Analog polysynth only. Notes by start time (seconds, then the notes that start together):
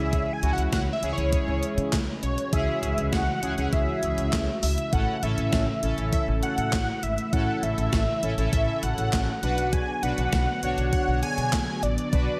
Already playing: C#4 E4 G#4
0.43 C#4 E4 F#4
1.03 C#4 E4 G#4
2.53 C#4 E4 G#4
3.43 C#4 E4 G#4
3.58 C#4 E4 G#4
4.93 C#4 E4 A4
5.23 C#4 E4 A4
5.83 C#4 E4 A4
7.33 C#4 E4 A4
8.23 C#4 E4 A4
8.38 C#4 E4 A4
9.43 D4 F#4 B4
10.03 D4 F#4 B4
10.63 D4 F#4 C#5
12.13 D4 F#4 B4